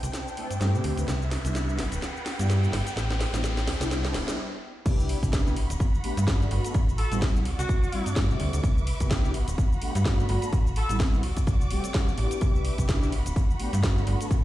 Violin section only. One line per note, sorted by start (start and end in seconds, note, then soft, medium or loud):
0.00 1.07 D4 medium
0.00 1.07 C5 medium
0.00 1.07 G5 medium
1.09 3.65 B4 medium
1.09 1.78 E5 medium
1.79 2.96 F#5 medium
1.79 3.66 G5 medium
2.97 3.67 C4 medium
3.67 4.38 D4 medium
3.67 4.38 C5 medium
3.67 4.38 G5 medium
4.86 5.56 E4 medium
4.86 7.43 B5 medium
5.57 8.61 F#4 medium
5.57 6.74 F#5 medium
7.46 8.63 D5 medium
7.46 9.33 D6 medium
8.64 9.34 B4 medium
8.64 9.34 E5 medium
9.34 12.39 F#4 medium
9.34 10.52 F#5 medium
9.34 11.22 B5 medium
11.24 12.41 D5 medium
11.24 13.11 D6 medium
12.42 13.12 B4 medium
12.42 13.12 E5 medium
13.13 14.44 F#4 medium
13.13 14.30 F#5 medium
13.13 14.30 B5 medium
14.31 14.44 B5 medium